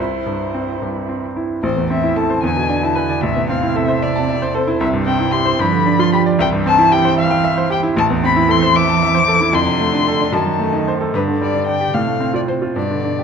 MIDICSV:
0, 0, Header, 1, 4, 480
1, 0, Start_track
1, 0, Tempo, 541028
1, 1447, Time_signature, 6, 3, 24, 8
1, 2868, Tempo, 525855
1, 9588, Tempo, 543478
1, 11920, End_track
2, 0, Start_track
2, 0, Title_t, "Violin"
2, 0, Program_c, 0, 40
2, 0, Note_on_c, 0, 72, 72
2, 705, Note_off_c, 0, 72, 0
2, 1444, Note_on_c, 0, 72, 87
2, 1666, Note_off_c, 0, 72, 0
2, 1691, Note_on_c, 0, 76, 85
2, 1915, Note_on_c, 0, 81, 84
2, 1929, Note_off_c, 0, 76, 0
2, 2151, Note_off_c, 0, 81, 0
2, 2157, Note_on_c, 0, 80, 95
2, 2522, Note_on_c, 0, 81, 89
2, 2536, Note_off_c, 0, 80, 0
2, 2618, Note_on_c, 0, 80, 88
2, 2632, Note_off_c, 0, 81, 0
2, 2850, Note_on_c, 0, 76, 98
2, 2863, Note_off_c, 0, 80, 0
2, 3100, Note_off_c, 0, 76, 0
2, 3112, Note_on_c, 0, 77, 87
2, 3350, Note_on_c, 0, 76, 92
2, 3364, Note_off_c, 0, 77, 0
2, 3589, Note_on_c, 0, 74, 96
2, 3603, Note_off_c, 0, 76, 0
2, 4069, Note_on_c, 0, 72, 85
2, 4082, Note_off_c, 0, 74, 0
2, 4290, Note_off_c, 0, 72, 0
2, 4296, Note_on_c, 0, 76, 100
2, 4369, Note_off_c, 0, 76, 0
2, 4533, Note_on_c, 0, 79, 102
2, 4773, Note_on_c, 0, 84, 109
2, 4786, Note_off_c, 0, 79, 0
2, 5028, Note_on_c, 0, 83, 109
2, 5042, Note_off_c, 0, 84, 0
2, 5392, Note_on_c, 0, 84, 109
2, 5405, Note_off_c, 0, 83, 0
2, 5505, Note_off_c, 0, 84, 0
2, 5511, Note_on_c, 0, 83, 108
2, 5584, Note_off_c, 0, 83, 0
2, 5762, Note_on_c, 0, 79, 111
2, 5835, Note_off_c, 0, 79, 0
2, 6005, Note_on_c, 0, 81, 115
2, 6234, Note_on_c, 0, 79, 116
2, 6248, Note_off_c, 0, 81, 0
2, 6471, Note_off_c, 0, 79, 0
2, 6486, Note_on_c, 0, 77, 114
2, 6949, Note_off_c, 0, 77, 0
2, 6961, Note_on_c, 0, 79, 105
2, 7034, Note_off_c, 0, 79, 0
2, 7202, Note_on_c, 0, 81, 116
2, 7276, Note_off_c, 0, 81, 0
2, 7445, Note_on_c, 0, 83, 111
2, 7686, Note_on_c, 0, 84, 118
2, 7699, Note_off_c, 0, 83, 0
2, 7913, Note_on_c, 0, 86, 118
2, 7927, Note_off_c, 0, 84, 0
2, 8631, Note_on_c, 0, 84, 115
2, 8645, Note_off_c, 0, 86, 0
2, 9353, Note_on_c, 0, 81, 97
2, 9367, Note_off_c, 0, 84, 0
2, 9828, Note_off_c, 0, 81, 0
2, 10078, Note_on_c, 0, 71, 90
2, 10149, Note_off_c, 0, 71, 0
2, 10318, Note_on_c, 0, 74, 93
2, 10530, Note_off_c, 0, 74, 0
2, 10536, Note_on_c, 0, 79, 98
2, 10774, Note_on_c, 0, 77, 91
2, 10787, Note_off_c, 0, 79, 0
2, 11134, Note_off_c, 0, 77, 0
2, 11140, Note_on_c, 0, 74, 76
2, 11187, Note_off_c, 0, 74, 0
2, 11254, Note_on_c, 0, 72, 60
2, 11325, Note_off_c, 0, 72, 0
2, 11505, Note_on_c, 0, 74, 76
2, 11920, Note_off_c, 0, 74, 0
2, 11920, End_track
3, 0, Start_track
3, 0, Title_t, "Grand piano"
3, 0, Program_c, 1, 0
3, 0, Control_c, 1, 64, 127
3, 0, Note_on_c, 1, 36, 56
3, 5, Control_c, 1, 64, 0
3, 160, Control_c, 1, 64, 127
3, 231, Note_on_c, 1, 43, 42
3, 481, Note_on_c, 1, 60, 42
3, 624, Note_off_c, 1, 43, 0
3, 726, Note_on_c, 1, 43, 39
3, 869, Note_off_c, 1, 60, 0
3, 965, Note_on_c, 1, 60, 39
3, 1112, Note_off_c, 1, 43, 0
3, 1210, Note_on_c, 1, 64, 40
3, 1352, Note_off_c, 1, 60, 0
3, 1411, Note_off_c, 1, 36, 0
3, 1446, Note_on_c, 1, 33, 68
3, 1449, Note_off_c, 1, 64, 0
3, 1466, Control_c, 1, 64, 0
3, 1567, Note_on_c, 1, 40, 48
3, 1619, Control_c, 1, 64, 127
3, 1690, Note_on_c, 1, 60, 54
3, 1756, Note_off_c, 1, 40, 0
3, 1804, Note_on_c, 1, 64, 53
3, 1876, Note_off_c, 1, 60, 0
3, 1922, Note_on_c, 1, 69, 57
3, 1993, Note_off_c, 1, 64, 0
3, 2041, Note_on_c, 1, 72, 57
3, 2111, Note_off_c, 1, 69, 0
3, 2137, Note_off_c, 1, 33, 0
3, 2159, Note_off_c, 1, 72, 0
3, 2160, Note_on_c, 1, 40, 68
3, 2174, Control_c, 1, 64, 0
3, 2275, Note_on_c, 1, 47, 53
3, 2318, Control_c, 1, 64, 127
3, 2386, Note_on_c, 1, 62, 57
3, 2466, Note_off_c, 1, 47, 0
3, 2513, Note_on_c, 1, 64, 58
3, 2580, Note_off_c, 1, 62, 0
3, 2622, Note_on_c, 1, 71, 60
3, 2702, Note_off_c, 1, 64, 0
3, 2744, Note_on_c, 1, 74, 57
3, 2816, Note_off_c, 1, 71, 0
3, 2848, Note_off_c, 1, 40, 0
3, 2864, Note_on_c, 1, 33, 69
3, 2865, Note_off_c, 1, 74, 0
3, 2887, Control_c, 1, 64, 0
3, 2984, Note_on_c, 1, 40, 52
3, 3045, Control_c, 1, 64, 127
3, 3106, Note_on_c, 1, 60, 60
3, 3179, Note_off_c, 1, 40, 0
3, 3226, Note_on_c, 1, 64, 55
3, 3300, Note_off_c, 1, 60, 0
3, 3345, Note_on_c, 1, 69, 61
3, 3420, Note_off_c, 1, 64, 0
3, 3463, Note_on_c, 1, 72, 60
3, 3539, Note_off_c, 1, 69, 0
3, 3591, Note_on_c, 1, 76, 68
3, 3658, Note_off_c, 1, 72, 0
3, 3711, Note_on_c, 1, 81, 69
3, 3782, Note_off_c, 1, 76, 0
3, 3836, Note_on_c, 1, 76, 65
3, 3902, Note_off_c, 1, 81, 0
3, 3953, Note_on_c, 1, 72, 62
3, 4024, Note_off_c, 1, 76, 0
3, 4067, Note_on_c, 1, 69, 65
3, 4142, Note_off_c, 1, 72, 0
3, 4185, Note_on_c, 1, 64, 62
3, 4260, Note_off_c, 1, 69, 0
3, 4270, Note_off_c, 1, 33, 0
3, 4303, Note_on_c, 1, 36, 75
3, 4307, Note_off_c, 1, 64, 0
3, 4325, Control_c, 1, 64, 0
3, 4421, Note_on_c, 1, 43, 61
3, 4466, Control_c, 1, 64, 127
3, 4547, Note_on_c, 1, 60, 63
3, 4618, Note_off_c, 1, 43, 0
3, 4661, Note_on_c, 1, 64, 59
3, 4741, Note_off_c, 1, 60, 0
3, 4777, Note_on_c, 1, 67, 65
3, 4857, Note_off_c, 1, 64, 0
3, 4897, Note_on_c, 1, 72, 67
3, 4975, Note_off_c, 1, 67, 0
3, 5005, Note_off_c, 1, 36, 0
3, 5020, Note_on_c, 1, 43, 79
3, 5023, Note_off_c, 1, 72, 0
3, 5046, Control_c, 1, 64, 0
3, 5141, Note_on_c, 1, 50, 61
3, 5200, Control_c, 1, 64, 127
3, 5265, Note_on_c, 1, 62, 67
3, 5338, Note_off_c, 1, 50, 0
3, 5387, Note_on_c, 1, 65, 68
3, 5460, Note_off_c, 1, 62, 0
3, 5514, Note_on_c, 1, 67, 66
3, 5581, Note_off_c, 1, 65, 0
3, 5632, Note_on_c, 1, 74, 68
3, 5705, Note_off_c, 1, 67, 0
3, 5725, Note_off_c, 1, 43, 0
3, 5748, Note_on_c, 1, 36, 81
3, 5752, Note_off_c, 1, 74, 0
3, 5769, Control_c, 1, 64, 0
3, 5871, Note_on_c, 1, 43, 65
3, 5932, Control_c, 1, 64, 127
3, 5996, Note_on_c, 1, 60, 70
3, 6063, Note_off_c, 1, 43, 0
3, 6109, Note_on_c, 1, 64, 68
3, 6185, Note_off_c, 1, 60, 0
3, 6230, Note_on_c, 1, 67, 69
3, 6301, Note_off_c, 1, 64, 0
3, 6352, Note_on_c, 1, 72, 70
3, 6421, Note_off_c, 1, 67, 0
3, 6468, Note_on_c, 1, 76, 78
3, 6543, Note_off_c, 1, 72, 0
3, 6586, Note_on_c, 1, 79, 75
3, 6661, Note_off_c, 1, 76, 0
3, 6709, Note_on_c, 1, 76, 78
3, 6781, Note_off_c, 1, 79, 0
3, 6833, Note_on_c, 1, 72, 70
3, 6902, Note_off_c, 1, 76, 0
3, 6948, Note_on_c, 1, 67, 73
3, 7024, Note_off_c, 1, 72, 0
3, 7065, Note_on_c, 1, 64, 71
3, 7142, Note_off_c, 1, 67, 0
3, 7153, Note_off_c, 1, 36, 0
3, 7187, Note_on_c, 1, 33, 83
3, 7188, Note_off_c, 1, 64, 0
3, 7210, Control_c, 1, 64, 0
3, 7313, Note_on_c, 1, 40, 66
3, 7346, Control_c, 1, 64, 127
3, 7434, Note_on_c, 1, 60, 68
3, 7503, Note_off_c, 1, 40, 0
3, 7550, Note_on_c, 1, 64, 68
3, 7622, Note_off_c, 1, 60, 0
3, 7664, Note_on_c, 1, 69, 66
3, 7740, Note_off_c, 1, 64, 0
3, 7789, Note_on_c, 1, 72, 68
3, 7856, Note_off_c, 1, 69, 0
3, 7915, Note_on_c, 1, 76, 72
3, 7979, Note_off_c, 1, 72, 0
3, 8036, Note_on_c, 1, 81, 70
3, 8102, Note_off_c, 1, 76, 0
3, 8156, Note_on_c, 1, 76, 73
3, 8223, Note_off_c, 1, 81, 0
3, 8265, Note_on_c, 1, 72, 65
3, 8344, Note_off_c, 1, 76, 0
3, 8388, Note_on_c, 1, 69, 66
3, 8459, Note_off_c, 1, 72, 0
3, 8503, Note_on_c, 1, 64, 64
3, 8581, Note_off_c, 1, 69, 0
3, 8590, Note_off_c, 1, 33, 0
3, 8615, Note_on_c, 1, 41, 80
3, 8626, Note_off_c, 1, 64, 0
3, 8645, Control_c, 1, 64, 0
3, 8735, Note_on_c, 1, 48, 58
3, 8820, Control_c, 1, 64, 127
3, 8862, Note_on_c, 1, 57, 61
3, 8934, Note_off_c, 1, 48, 0
3, 8984, Note_on_c, 1, 62, 64
3, 9058, Note_off_c, 1, 57, 0
3, 9109, Note_on_c, 1, 69, 63
3, 9179, Note_off_c, 1, 62, 0
3, 9232, Note_on_c, 1, 62, 60
3, 9301, Note_off_c, 1, 69, 0
3, 9321, Note_off_c, 1, 41, 0
3, 9339, Note_on_c, 1, 42, 75
3, 9351, Note_off_c, 1, 62, 0
3, 9367, Control_c, 1, 64, 0
3, 9463, Note_on_c, 1, 54, 55
3, 9489, Control_c, 1, 64, 127
3, 9586, Note_on_c, 1, 57, 61
3, 9658, Note_off_c, 1, 54, 0
3, 9707, Note_on_c, 1, 63, 61
3, 9777, Note_off_c, 1, 57, 0
3, 9840, Note_on_c, 1, 72, 61
3, 9897, Note_off_c, 1, 63, 0
3, 9953, Note_on_c, 1, 69, 59
3, 10023, Note_off_c, 1, 72, 0
3, 10037, Note_off_c, 1, 42, 0
3, 10067, Note_off_c, 1, 69, 0
3, 10068, Note_on_c, 1, 43, 72
3, 10081, Control_c, 1, 64, 0
3, 10192, Note_on_c, 1, 50, 53
3, 10216, Control_c, 1, 64, 127
3, 10311, Note_on_c, 1, 55, 56
3, 10377, Note_off_c, 1, 50, 0
3, 10427, Note_on_c, 1, 62, 56
3, 10496, Note_off_c, 1, 55, 0
3, 10543, Note_on_c, 1, 74, 57
3, 10613, Note_off_c, 1, 62, 0
3, 10661, Note_on_c, 1, 67, 54
3, 10730, Note_off_c, 1, 74, 0
3, 10756, Note_off_c, 1, 43, 0
3, 10777, Note_off_c, 1, 67, 0
3, 10780, Note_on_c, 1, 45, 63
3, 10793, Control_c, 1, 64, 0
3, 10892, Note_on_c, 1, 57, 49
3, 10920, Control_c, 1, 64, 127
3, 11010, Note_on_c, 1, 60, 51
3, 11085, Note_off_c, 1, 57, 0
3, 11128, Note_on_c, 1, 65, 52
3, 11205, Note_off_c, 1, 60, 0
3, 11254, Note_on_c, 1, 72, 52
3, 11325, Note_off_c, 1, 65, 0
3, 11376, Note_on_c, 1, 65, 49
3, 11450, Note_off_c, 1, 72, 0
3, 11480, Note_off_c, 1, 45, 0
3, 11499, Note_off_c, 1, 65, 0
3, 11499, Note_on_c, 1, 43, 58
3, 11517, Control_c, 1, 64, 0
3, 11633, Note_on_c, 1, 50, 43
3, 11685, Control_c, 1, 64, 127
3, 11755, Note_on_c, 1, 62, 47
3, 11826, Note_off_c, 1, 50, 0
3, 11879, Note_on_c, 1, 67, 44
3, 11920, Note_off_c, 1, 43, 0
3, 11920, Note_off_c, 1, 62, 0
3, 11920, Note_off_c, 1, 67, 0
3, 11920, End_track
4, 0, Start_track
4, 0, Title_t, "Cello"
4, 0, Program_c, 2, 42
4, 0, Note_on_c, 2, 64, 56
4, 1065, Note_off_c, 2, 64, 0
4, 1445, Note_on_c, 2, 52, 66
4, 2122, Note_off_c, 2, 52, 0
4, 2154, Note_on_c, 2, 50, 69
4, 2866, Note_on_c, 2, 48, 74
4, 2880, Note_off_c, 2, 50, 0
4, 4293, Note_off_c, 2, 48, 0
4, 4299, Note_on_c, 2, 48, 75
4, 5010, Note_off_c, 2, 48, 0
4, 5028, Note_on_c, 2, 53, 79
4, 5737, Note_on_c, 2, 52, 85
4, 5751, Note_off_c, 2, 53, 0
4, 7184, Note_off_c, 2, 52, 0
4, 7189, Note_on_c, 2, 52, 89
4, 8623, Note_on_c, 2, 50, 80
4, 8637, Note_off_c, 2, 52, 0
4, 9355, Note_on_c, 2, 51, 71
4, 9369, Note_off_c, 2, 50, 0
4, 10068, Note_on_c, 2, 50, 73
4, 10081, Note_off_c, 2, 51, 0
4, 10764, Note_off_c, 2, 50, 0
4, 10770, Note_on_c, 2, 48, 63
4, 11483, Note_off_c, 2, 48, 0
4, 11499, Note_on_c, 2, 47, 59
4, 11920, Note_off_c, 2, 47, 0
4, 11920, End_track
0, 0, End_of_file